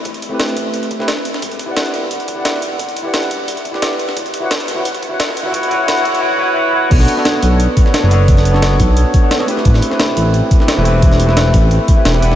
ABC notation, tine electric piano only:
X:1
M:4/4
L:1/16
Q:"Swing 16ths" 1/4=175
K:Bm
V:1 name="Tine electric piano"
z3 [A,=CEGB]8 [A,CEGB] z4 | z3 [EGBdf]4- [EGBdf] z3 [EGBdf]4- [EGBdf] | z3 [EGBdf]4- [EGBdf] z3 [EGBdf]4- [EGBdf] | z3 [EFBcf] z3 [EFBcf] z3 [EFBcf] z3 [EFBcf] |
[EFBcf]2 [EFBcf]2 [EFBcf]2 [EFBcf]2 [EFBcf]2 [EFBcf]2 [EFBcf]2 [EFBcf]2 | [B,DFAc]3 [B,DFAc]8 [B,DFAc]2 [B,DFAc] [B,DFAc]2- | [B,DFAc]3 [B,DFAc]8 [B,DFAc]2 [B,DFAc] [A,=CEGB]2- | [A,=CEGB]3 [A,CEGB]8 [A,CEGB]2 [A,CEGB] [A,CEGB]2- |
[A,=CEGB]3 [A,CEGB]8 [A,CEGB]2 [A,CEGB] [EGBdf]2 |]